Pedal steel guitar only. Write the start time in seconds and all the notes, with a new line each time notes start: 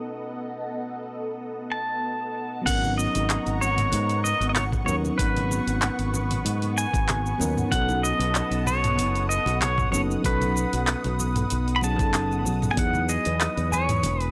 1.72 A5
2.66 F#5
2.98 D#5
3.61 C#5
4.24 D#5
4.49 D#5
4.55 C#5
4.86 C#5
5.18 B4
6.78 G#5
7.72 F#5
8.03 D#5
8.67 C#5
9.29 D#5
9.62 C#5
9.92 C#5
10.26 B4
11.76 B5
11.84 A5
12.71 G#5
12.79 F#5
13.09 D#5
13.74 C#5
14.23 B4